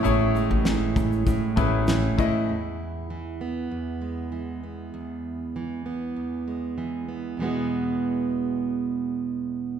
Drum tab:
SH |x-x-x-xxx-x-x-x-|----------------|----------------|----------------|
SD |----o-------o---|----------------|----------------|----------------|
BD |------o-o-o---o-|----------------|----------------|----------------|